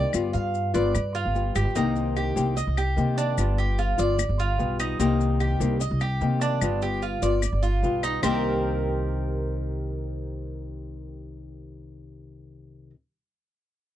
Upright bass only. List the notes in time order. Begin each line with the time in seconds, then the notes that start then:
0.14 G1
0.34 G2
0.75 G1
0.95 G2
1.25 G1
1.56 G1
1.76 C2
2.37 C2
2.67 C2
2.97 C3
3.38 G1
3.99 G1
4.29 G1
4.59 B1
5.00 C2
5.60 C2
5.91 C2
6.21 C3
6.62 G1
7.22 G1
7.53 G1
7.83 B1
8.23 C2